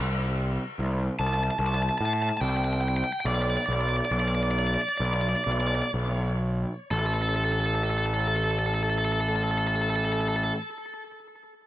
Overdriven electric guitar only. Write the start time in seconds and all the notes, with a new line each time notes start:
1.19 A5
1.27 A5
1.34 A5
1.43 A5
1.51 A5
1.59 A5
1.66 A5
1.75 A5
1.82 A5
1.89 A5
1.98 A5
2.05 A5
2.13 A5
2.22 A5
2.29 A5
2.37 A5
2.41 G5
2.49 G5
2.57 G5
2.64 G5
2.73 G5
2.81 G5
2.88 G5
2.97 G5
3.04 G5
3.13 G5
3.20 G5
3.27 D5
3.34 D5
3.42 D5
3.50 D5
3.57 D5
3.66 D5
3.73 D5
3.81 D5
3.89 D5
3.97 D5
4.05 D5
4.12 D5
4.20 D5
4.28 D5
4.35 D5
4.43 D5
4.51 D5
4.59 D5
4.67 D5
4.74 D5
4.81 D5
4.89 D5
4.98 D5
5.05 D5
5.14 D5
5.21 D5
5.29 D5
5.36 D5
5.44 D5
5.52 D5
5.61 D5
5.67 D5
5.75 D5
5.82 D5
6.91 A4
6.99 A4
7.06 A4
7.14 A4
7.22 A4
7.29 A4
7.36 A4
7.44 A4
7.52 A4
7.60 A4
7.66 A4
7.75 A4
7.83 A4
7.90 A4
7.98 A4
8.06 A4
8.14 A4
8.20 A4
8.28 A4
8.36 A4
8.44 A4
8.51 A4
8.59 A4
8.66 A4
8.74 A4
8.83 A4
8.90 A4
8.98 A4
9.05 A4
9.12 A4
9.21 A4
9.29 A4
9.36 A4
9.44 A4
9.51 A4
9.58 A4
9.67 A4
9.76 A4
9.82 A4
9.90 A4
9.96 A4
10.05 A4
10.12 A4
10.21 A4
10.28 A4
10.36 A4
10.44 A4